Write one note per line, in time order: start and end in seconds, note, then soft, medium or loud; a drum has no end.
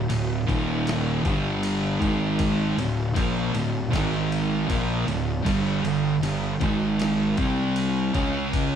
0.09 0.46 D1 medium
0.09 0.40 D2 medium
0.09 0.40 A2 medium
0.09 ride medium
0.46 1.21 D#1 medium
0.46 1.23 D#2 medium
0.46 1.23 A#2 loud
0.46 1.24 D#3 medium
0.46 kick loud
0.46 ride medium
0.87 snare loud
0.87 ride medium
1.24 1.98 G1 medium
1.24 1.99 G2 medium
1.24 2.00 D3 loud
1.24 2.01 G3 loud
1.24 kick loud
1.24 ride medium
1.63 ride medium
2.00 2.74 G#1 loud
2.00 2.76 G#2 loud
2.00 2.76 D#3 medium
2.00 2.77 G#3 loud
2.00 kick loud
2.00 ride medium
2.39 kick loud
2.39 ride loud
2.77 3.13 D1 medium
2.77 3.08 D2 medium
2.77 3.08 A2 medium
2.77 ride medium
3.14 3.52 A#1 loud
3.14 3.52 A#2 medium
3.14 3.53 F3 medium
3.14 3.54 A#3 loud
3.14 kick loud
3.14 ride medium
3.54 3.90 D1 medium
3.54 3.85 D2 medium
3.54 3.86 A2 medium
3.54 ride medium
3.91 4.66 G#1 medium
3.91 4.67 G#2 medium
3.91 4.68 D#3 medium
3.91 4.68 G#3 loud
3.91 kick loud
3.91 ride loud
3.96 snare loud
4.32 ride medium
4.68 5.05 A#1 medium
4.68 5.06 A#2 medium
4.68 5.06 F3 medium
4.68 5.06 A#3 medium
4.68 kick loud
4.68 ride medium
5.06 5.44 D1 medium
5.06 5.38 D2 medium
5.06 5.38 A2 medium
5.06 ride medium
5.43 5.82 G1 loud
5.43 5.81 G2 medium
5.43 5.81 D3 medium
5.43 5.83 G3 loud
5.43 kick loud
5.43 ride loud
5.82 6.20 G1 medium
5.82 6.14 G2 medium
5.82 6.14 D3 medium
5.82 ride medium
6.21 6.59 G1 medium
6.21 6.53 G2 medium
6.21 6.53 D3 medium
6.21 ride medium
6.59 7.34 G#1 medium
6.59 7.36 G#2 medium
6.59 7.36 D#3 loud
6.59 7.37 G#3 loud
6.59 kick loud
6.59 ride medium
6.99 snare loud
6.99 ride medium
7.37 8.11 C2 medium
7.37 8.13 C3 medium
7.37 8.14 G3 loud
7.37 8.14 C4 loud
7.37 kick loud
7.37 ride medium
7.76 ride medium
8.14 8.76 C#2 loud
8.14 8.76 C#3 medium
8.14 8.76 G#3 medium
8.14 8.76 C#4 medium
8.14 kick loud
8.14 ride medium
8.53 kick loud
8.53 ride loud